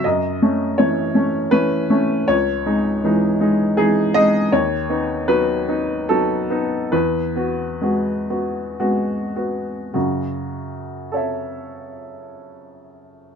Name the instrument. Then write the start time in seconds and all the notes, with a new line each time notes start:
upright piano
0.04 F#2 D#5
0.42 A3 C#4
0.78 E3 A3 C#4 C#5
1.15 A3 C#4
1.51 E3 A3 C#4 B4
1.90 A3 C#4
2.28 C#2 C#5
2.66 G#3 D#4
3.04 E3 G#3 D#4
3.40 G#3 D#4
3.77 E3 G#3 D#4 G#4
4.14 G#3 D#4 D#5
4.52 D#2 C#5
4.89 B3 D#4
5.28 F#3 B3 D#4 B4
5.68 B3 D#4
6.09 F#3 B3 D#4 A4
6.50 B3 D#4
6.92 E2 B4
7.36 B3 F#4
7.81 G#3 B3 F#4
8.30 B3 F#4
8.80 G#3 B3 F#4
9.36 B3 F#4
9.94 F#2 C#3 F#4
11.12 A4 C#5
11.16 E5